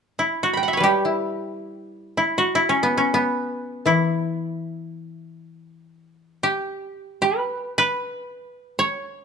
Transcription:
0.19 2.17 E4 soft
0.43 0.89 F#4 medium
0.54 1.92 G5 soft
0.54 1.71 B5 soft
0.63 0.89 F#5 soft
0.68 2.17 E5 soft
0.73 2.39 C#5 soft
0.77 3.49 G3 soft
0.77 2.55 B4 soft
0.83 2.44 G4 medium
1.05 2.83 E4 soft
2.17 2.55 E4 soft
2.38 4.49 F#4 medium
2.55 3.86 E4 medium
2.69 2.97 C#4 soft
2.83 3.14 B3 soft
2.98 5.49 C#4 soft
3.14 5.83 B3 soft
3.86 6.48 E3 soft
3.86 6.13 E4 soft
6.43 8.47 G4 medium
7.22 7.78 B4 medium
7.78 9.25 B4 medium
8.79 9.25 C#5 medium

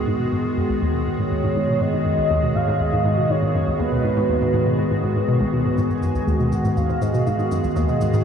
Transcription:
0.00 5.77 D#3 medium
0.00 5.78 G#3 medium
0.00 5.78 B3 medium
0.00 8.24 F#4 medium
0.00 5.78 G#4 medium
0.08 0.20 G#2 loud
0.20 0.28 B2 medium
0.32 0.41 G#2 medium
0.45 0.53 G#2 medium
0.57 0.65 F#2 medium
0.70 0.82 C#2 medium
0.82 0.94 D#2 loud
0.94 1.06 B2 medium
1.07 1.12 G#2 medium
1.07 1.83 C#5 loud
1.19 1.24 G#2 loud
1.32 1.40 D#2 medium
1.44 1.52 G#2 medium
1.56 1.68 G#2 medium
1.69 1.77 B2 medium
1.81 1.89 G#2 medium
1.81 2.57 D#5 loud
1.93 2.02 G#2 medium
2.06 2.14 F#2 medium
2.18 2.30 C#2 medium
2.31 2.43 D#2 loud
2.43 2.55 B2 medium
2.56 2.61 G#2 medium
2.56 2.82 F5 loud
2.68 2.73 G#2 loud
2.80 2.89 D#2 medium
2.80 3.32 D#5 loud
2.93 3.01 G#2 loud
3.05 3.17 G#2 medium
3.18 3.26 B2 medium
3.30 3.38 G#2 medium
3.30 3.79 C#5 loud
3.42 3.51 G#2 medium
3.55 3.63 F#2 medium
3.67 3.79 C#2 medium
3.80 3.92 D#2 loud
3.80 5.25 B4 loud
3.92 4.04 B2 medium
4.04 4.09 G#2 medium
4.17 4.22 G#2 loud
4.29 4.37 D#2 medium
4.42 4.50 G#2 loud
4.54 4.66 G#2 loud
4.67 4.75 B2 medium
4.79 4.87 G#2 medium
4.91 4.99 G#2 medium
5.04 5.15 G#2 loud
5.16 5.24 G#2 medium
5.28 5.40 B2 loud
5.41 5.49 C#2 loud
5.53 5.61 B2 medium
5.66 5.74 G#2 medium
5.78 5.86 G#2 medium
5.78 8.24 D#3 medium
5.78 6.54 G#5 loud
5.78 high tom soft
5.78 cabasa soft
5.88 5.98 G#2 medium
5.88 8.24 G#3 medium
5.88 8.24 B3 medium
5.88 8.24 G#4 medium
5.88 cabasa soft
6.03 6.11 F#2 medium
6.03 cabasa medium
6.15 6.27 C#2 medium
6.15 high tom soft
6.15 cabasa soft
6.27 6.39 D#2 loud
6.27 cabasa soft
6.40 6.52 B2 medium
6.40 cabasa soft
6.52 6.57 G#2 medium
6.52 6.76 F#5 loud
6.52 high tom soft
6.52 cabasa medium
6.65 6.70 G#2 loud
6.65 cabasa soft
6.77 6.85 D#2 medium
6.77 7.03 F5 loud
6.77 cabasa soft
6.89 6.98 G#2 loud
6.89 high tom soft
6.89 cabasa soft
7.02 7.14 G#2 loud
7.02 7.28 D#5 loud
7.02 cabasa medium
7.14 7.22 B2 medium
7.14 cabasa soft
7.26 7.35 G#2 medium
7.26 7.77 F5 loud
7.26 high tom soft
7.26 cabasa soft
7.39 7.47 G#2 medium
7.39 cabasa soft
7.51 7.60 F#2 medium
7.51 cabasa medium
7.64 7.76 C#2 medium
7.64 high tom soft
7.64 cabasa medium
7.76 7.88 D#2 loud
7.76 8.24 D#5 loud
7.76 cabasa medium
7.89 8.01 B2 medium
7.89 cabasa soft
8.01 8.06 G#2 medium
8.01 high tom soft
8.01 cabasa medium
8.14 8.18 G#2 loud
8.14 cabasa medium

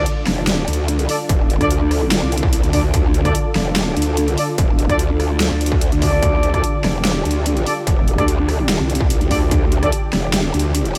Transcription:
0.00 10.98 D3 medium
0.00 10.98 D4 medium
0.00 10.98 F4 medium
0.00 6.21 A4 loud
0.06 closed hi-hat medium
0.27 0.66 F1 medium
0.27 cross-stick medium
0.27 snare medium
0.27 open hi-hat medium
0.47 snare loud
0.47 closed hi-hat medium
0.68 1.07 D2 loud
0.68 closed hi-hat soft
0.73 closed hi-hat medium
0.88 closed hi-hat medium
0.99 closed hi-hat soft
1.09 1.15 D4 medium
1.09 1.15 A4 medium
1.09 1.15 D5 medium
1.09 open hi-hat medium
1.29 1.59 E1 loud
1.29 kick loud
1.29 closed hi-hat medium
1.50 closed hi-hat medium
1.61 2.21 D2 medium
1.61 1.66 D4 loud
1.61 1.66 A4 loud
1.61 1.66 D5 loud
1.61 kick medium
1.61 cross-stick medium
1.61 closed hi-hat soft
1.71 closed hi-hat medium
1.91 cross-stick medium
1.91 open hi-hat medium
2.12 snare loud
2.12 closed hi-hat medium
2.22 2.62 C2 loud
2.32 closed hi-hat medium
2.38 closed hi-hat medium
2.43 kick loud
2.53 closed hi-hat medium
2.64 2.72 D2 medium
2.64 closed hi-hat soft
2.73 2.92 D2 medium
2.73 2.79 D4 medium
2.73 2.79 A4 medium
2.73 2.79 D5 loud
2.73 kick medium
2.73 open hi-hat loud
2.94 3.33 D2 loud
2.94 kick loud
2.94 closed hi-hat medium
3.14 closed hi-hat medium
3.25 3.30 D4 loud
3.25 3.30 A4 medium
3.25 3.30 D5 loud
3.25 kick medium
3.25 cross-stick medium
3.25 closed hi-hat soft
3.35 closed hi-hat medium
3.55 3.95 F1 loud
3.55 cross-stick soft
3.55 snare medium
3.55 open hi-hat medium
3.76 snare loud
3.76 closed hi-hat medium
3.97 4.36 D2 medium
3.97 closed hi-hat medium
4.02 closed hi-hat medium
4.17 closed hi-hat medium
4.28 closed hi-hat soft
4.38 4.43 D4 medium
4.38 4.43 A4 medium
4.38 4.43 D5 loud
4.38 open hi-hat medium
4.58 4.88 E1 loud
4.58 kick loud
4.58 closed hi-hat medium
4.79 closed hi-hat medium
4.89 5.49 D2 medium
4.89 4.95 D4 loud
4.89 4.95 A4 medium
4.89 4.95 D5 loud
4.89 kick medium
4.89 cross-stick soft
4.89 closed hi-hat soft
4.99 closed hi-hat medium
5.20 cross-stick medium
5.20 open hi-hat medium
5.40 snare loud
5.40 closed hi-hat medium
5.51 5.91 D2 loud
5.61 closed hi-hat soft
5.66 closed hi-hat medium
5.72 kick loud
5.81 closed hi-hat medium
5.92 6.21 D2 medium
5.92 closed hi-hat soft
6.02 6.51 D4 medium
6.02 6.51 A4 medium
6.02 6.51 D5 medium
6.02 kick medium
6.02 open hi-hat medium
6.22 6.62 D2 loud
6.22 10.98 G4 medium
6.22 kick loud
6.22 closed hi-hat medium
6.43 closed hi-hat medium
6.54 6.59 D4 medium
6.54 6.59 A4 medium
6.54 6.59 D5 loud
6.54 kick medium
6.54 cross-stick medium
6.54 closed hi-hat soft
6.64 closed hi-hat medium
6.84 7.24 F1 medium
6.84 cross-stick medium
6.84 snare medium
6.84 open hi-hat medium
7.05 snare loud
7.05 closed hi-hat medium
7.25 7.65 D2 medium
7.25 closed hi-hat soft
7.31 closed hi-hat medium
7.46 closed hi-hat medium
7.57 closed hi-hat soft
7.66 7.72 D4 medium
7.66 7.72 A4 medium
7.66 7.72 D5 loud
7.66 open hi-hat medium
7.87 8.17 E1 loud
7.87 kick loud
7.87 closed hi-hat medium
8.08 closed hi-hat medium
8.18 8.78 D2 medium
8.18 8.23 D4 loud
8.18 8.23 A4 medium
8.18 8.23 D5 loud
8.18 kick medium
8.18 cross-stick medium
8.18 closed hi-hat soft
8.28 closed hi-hat medium
8.49 cross-stick medium
8.49 open hi-hat medium
8.69 snare loud
8.69 closed hi-hat medium
8.80 9.19 C2 loud
8.90 closed hi-hat soft
8.95 closed hi-hat medium
9.00 kick medium
9.10 closed hi-hat medium
9.21 9.29 D2 loud
9.21 closed hi-hat soft
9.31 9.50 D2 medium
9.31 9.37 D4 medium
9.31 9.37 A4 medium
9.31 9.37 D5 loud
9.31 kick medium
9.31 open hi-hat medium
9.51 9.91 D2 loud
9.51 kick loud
9.51 closed hi-hat medium
9.72 closed hi-hat medium
9.83 9.88 D4 loud
9.83 9.88 A4 medium
9.83 9.88 D5 loud
9.83 kick medium
9.83 cross-stick medium
9.83 closed hi-hat soft
9.92 closed hi-hat medium
10.13 10.53 F1 medium
10.13 cross-stick medium
10.13 snare medium
10.13 open hi-hat medium
10.33 snare loud
10.33 closed hi-hat medium
10.54 10.94 D2 loud
10.54 closed hi-hat soft
10.59 closed hi-hat medium
10.75 closed hi-hat medium
10.85 closed hi-hat soft
10.95 10.98 D4 medium
10.95 10.98 A4 medium
10.95 10.98 D5 loud
10.95 open hi-hat loud

